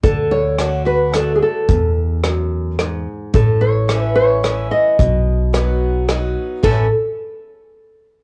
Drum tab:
RD |------|------|------|------|
HH |x-x-x-|x-x-x-|x-x-x-|x-x-x-|
SD |--r-r-|--r-r-|--r-r-|--r-r-|
BD |o-----|o-----|o-----|o-----|

RD |x-----|
HH |------|
SD |------|
BD |o-----|